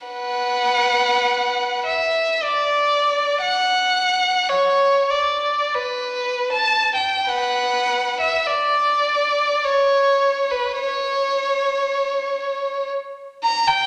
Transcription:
0, 0, Header, 1, 2, 480
1, 0, Start_track
1, 0, Key_signature, 2, "minor"
1, 0, Tempo, 1212121
1, 22, Time_signature, 3, 2, 24, 8
1, 501, Tempo, 1134216
1, 981, Tempo, 1008403
1, 1461, Tempo, 1065719
1, 1941, Tempo, 1232033
1, 2421, Tempo, 1558442
1, 2901, Tempo, 1192843
1, 3861, Tempo, 1140684
1, 4341, Tempo, 1090909
1, 4821, Tempo, 1025641
1, 5750, End_track
2, 0, Start_track
2, 0, Title_t, "Violin"
2, 0, Program_c, 0, 40
2, 27, Note_on_c, 0, 71, 36
2, 28, Note_on_c, 0, 78, 44
2, 734, Note_off_c, 0, 71, 0
2, 734, Note_off_c, 0, 78, 0
2, 751, Note_on_c, 0, 76, 42
2, 984, Note_off_c, 0, 76, 0
2, 995, Note_on_c, 0, 74, 48
2, 1464, Note_on_c, 0, 78, 60
2, 1468, Note_off_c, 0, 74, 0
2, 1933, Note_off_c, 0, 78, 0
2, 1946, Note_on_c, 0, 73, 55
2, 2178, Note_off_c, 0, 73, 0
2, 2185, Note_on_c, 0, 74, 42
2, 2425, Note_off_c, 0, 74, 0
2, 2432, Note_on_c, 0, 71, 44
2, 2670, Note_off_c, 0, 71, 0
2, 2671, Note_on_c, 0, 81, 46
2, 2791, Note_off_c, 0, 81, 0
2, 2803, Note_on_c, 0, 79, 38
2, 2905, Note_off_c, 0, 79, 0
2, 2907, Note_on_c, 0, 71, 35
2, 2910, Note_on_c, 0, 78, 47
2, 3252, Note_off_c, 0, 71, 0
2, 3269, Note_off_c, 0, 78, 0
2, 3275, Note_on_c, 0, 76, 44
2, 3384, Note_on_c, 0, 74, 49
2, 3388, Note_off_c, 0, 76, 0
2, 3859, Note_on_c, 0, 73, 43
2, 3860, Note_off_c, 0, 74, 0
2, 4221, Note_off_c, 0, 73, 0
2, 4221, Note_on_c, 0, 71, 40
2, 4339, Note_on_c, 0, 73, 50
2, 4341, Note_off_c, 0, 71, 0
2, 5290, Note_off_c, 0, 73, 0
2, 5546, Note_on_c, 0, 82, 63
2, 5655, Note_off_c, 0, 82, 0
2, 5659, Note_on_c, 0, 79, 67
2, 5750, Note_off_c, 0, 79, 0
2, 5750, End_track
0, 0, End_of_file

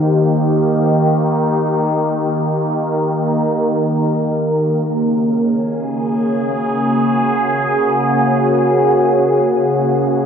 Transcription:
0, 0, Header, 1, 2, 480
1, 0, Start_track
1, 0, Tempo, 500000
1, 9848, End_track
2, 0, Start_track
2, 0, Title_t, "Ambient pad"
2, 0, Program_c, 0, 92
2, 0, Note_on_c, 0, 51, 69
2, 0, Note_on_c, 0, 58, 74
2, 0, Note_on_c, 0, 67, 77
2, 0, Note_on_c, 0, 70, 70
2, 0, Note_on_c, 0, 72, 57
2, 291, Note_off_c, 0, 72, 0
2, 4560, Note_off_c, 0, 67, 0
2, 4562, Note_off_c, 0, 51, 0
2, 4566, Note_on_c, 0, 49, 65
2, 4995, Note_on_c, 0, 68, 75
2, 5498, Note_on_c, 0, 66, 101
2, 6658, Note_off_c, 0, 70, 0
2, 9848, Note_off_c, 0, 49, 0
2, 9848, Note_off_c, 0, 58, 0
2, 9848, Note_off_c, 0, 66, 0
2, 9848, Note_off_c, 0, 68, 0
2, 9848, End_track
0, 0, End_of_file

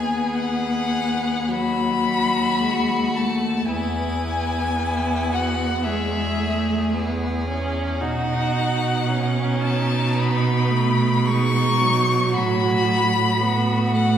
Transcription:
0, 0, Header, 1, 5, 480
1, 0, Start_track
1, 0, Tempo, 1151631
1, 624, Tempo, 1107011
1, 1104, Tempo, 1081081
1, 1585, Time_signature, 4, 2, 24, 8
1, 6242, End_track
2, 0, Start_track
2, 0, Title_t, "Violin"
2, 0, Program_c, 0, 40
2, 0, Note_on_c, 0, 80, 61
2, 146, Note_on_c, 0, 78, 57
2, 152, Note_off_c, 0, 80, 0
2, 631, Note_on_c, 0, 83, 68
2, 637, Note_off_c, 0, 78, 0
2, 1352, Note_on_c, 0, 81, 52
2, 1359, Note_off_c, 0, 83, 0
2, 1584, Note_off_c, 0, 81, 0
2, 1587, Note_on_c, 0, 80, 72
2, 2320, Note_on_c, 0, 78, 61
2, 2327, Note_off_c, 0, 80, 0
2, 2544, Note_on_c, 0, 76, 58
2, 2550, Note_off_c, 0, 78, 0
2, 3019, Note_off_c, 0, 76, 0
2, 3499, Note_on_c, 0, 78, 62
2, 4198, Note_off_c, 0, 78, 0
2, 4222, Note_on_c, 0, 81, 61
2, 4469, Note_on_c, 0, 83, 61
2, 4475, Note_off_c, 0, 81, 0
2, 4945, Note_on_c, 0, 85, 80
2, 4951, Note_off_c, 0, 83, 0
2, 5426, Note_on_c, 0, 83, 79
2, 5433, Note_off_c, 0, 85, 0
2, 6141, Note_off_c, 0, 83, 0
2, 6146, Note_on_c, 0, 78, 72
2, 6242, Note_off_c, 0, 78, 0
2, 6242, End_track
3, 0, Start_track
3, 0, Title_t, "Violin"
3, 0, Program_c, 1, 40
3, 0, Note_on_c, 1, 68, 41
3, 632, Note_on_c, 1, 66, 49
3, 638, Note_off_c, 1, 68, 0
3, 1587, Note_off_c, 1, 66, 0
3, 1590, Note_on_c, 1, 64, 46
3, 2063, Note_off_c, 1, 64, 0
3, 2078, Note_on_c, 1, 64, 48
3, 2314, Note_on_c, 1, 66, 49
3, 2321, Note_off_c, 1, 64, 0
3, 2551, Note_off_c, 1, 66, 0
3, 2553, Note_on_c, 1, 68, 45
3, 3015, Note_off_c, 1, 68, 0
3, 3030, Note_on_c, 1, 68, 48
3, 3504, Note_on_c, 1, 66, 47
3, 3510, Note_off_c, 1, 68, 0
3, 3972, Note_on_c, 1, 63, 47
3, 3979, Note_off_c, 1, 66, 0
3, 4943, Note_off_c, 1, 63, 0
3, 4947, Note_on_c, 1, 63, 55
3, 5422, Note_on_c, 1, 66, 49
3, 5428, Note_off_c, 1, 63, 0
3, 5899, Note_off_c, 1, 66, 0
3, 5902, Note_on_c, 1, 66, 47
3, 6242, Note_off_c, 1, 66, 0
3, 6242, End_track
4, 0, Start_track
4, 0, Title_t, "Viola"
4, 0, Program_c, 2, 41
4, 0, Note_on_c, 2, 59, 43
4, 620, Note_on_c, 2, 54, 40
4, 626, Note_off_c, 2, 59, 0
4, 1104, Note_on_c, 2, 56, 43
4, 1110, Note_off_c, 2, 54, 0
4, 1347, Note_on_c, 2, 57, 45
4, 1354, Note_off_c, 2, 56, 0
4, 1587, Note_on_c, 2, 59, 42
4, 1594, Note_off_c, 2, 57, 0
4, 1823, Note_off_c, 2, 59, 0
4, 1826, Note_on_c, 2, 59, 50
4, 2552, Note_on_c, 2, 56, 50
4, 2558, Note_off_c, 2, 59, 0
4, 2786, Note_on_c, 2, 57, 49
4, 2793, Note_off_c, 2, 56, 0
4, 3027, Note_on_c, 2, 59, 47
4, 3034, Note_off_c, 2, 57, 0
4, 3263, Note_off_c, 2, 59, 0
4, 3270, Note_on_c, 2, 61, 51
4, 3503, Note_on_c, 2, 63, 46
4, 3509, Note_off_c, 2, 61, 0
4, 3980, Note_on_c, 2, 61, 52
4, 3987, Note_off_c, 2, 63, 0
4, 4457, Note_on_c, 2, 59, 48
4, 4464, Note_off_c, 2, 61, 0
4, 4699, Note_on_c, 2, 57, 45
4, 4705, Note_off_c, 2, 59, 0
4, 4941, Note_off_c, 2, 57, 0
4, 4943, Note_on_c, 2, 56, 47
4, 5188, Note_on_c, 2, 54, 58
4, 5194, Note_off_c, 2, 56, 0
4, 5903, Note_on_c, 2, 59, 47
4, 5909, Note_off_c, 2, 54, 0
4, 6137, Note_on_c, 2, 57, 47
4, 6144, Note_off_c, 2, 59, 0
4, 6242, Note_off_c, 2, 57, 0
4, 6242, End_track
5, 0, Start_track
5, 0, Title_t, "Cello"
5, 0, Program_c, 3, 42
5, 0, Note_on_c, 3, 39, 45
5, 1568, Note_off_c, 3, 39, 0
5, 1584, Note_on_c, 3, 40, 49
5, 3503, Note_on_c, 3, 47, 53
5, 3510, Note_off_c, 3, 40, 0
5, 5425, Note_on_c, 3, 45, 58
5, 5431, Note_off_c, 3, 47, 0
5, 6242, Note_off_c, 3, 45, 0
5, 6242, End_track
0, 0, End_of_file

